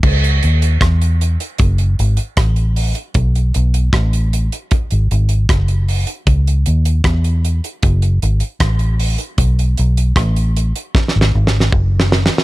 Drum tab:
CC |x-----------------------------------------------|------------------------------------------------|------------------------------------------------|------------------------------------------------|
HH |---x--x--x--x--x--x--x--x--x--x--x--x--x--o--x--|x--x--x--x--x--x--x--x--x--x--x--x--x--x--o--x--|x--x--x--x--x--x--x--x--x--x--x--x--x--x--o--x--|x--x--x--x--x--x--x--x--------------------------|
SD |------------r-----------------------r-----------|------------r-----------------------r-----------|------------r-----------------------r-----------|------------r-----------o-o-o---o-o-----o-o-o-o-|
BD |o-----------o-----------o-----------o-----------|o-----------o-----------o-----------o-----------|o-----------o-----------o-----------o-----------|o-----------o-----------o-----------o-----------|